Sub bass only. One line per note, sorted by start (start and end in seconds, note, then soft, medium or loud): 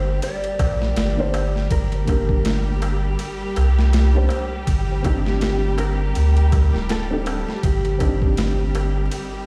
0.00 0.20 G1 medium
0.60 0.93 A#1 medium
0.97 1.68 G1 medium
1.71 3.16 G1 medium
3.57 4.28 C2 loud
4.68 6.13 G1 medium
6.17 6.70 D2 medium
6.75 7.44 D1 medium
7.64 9.09 G1 loud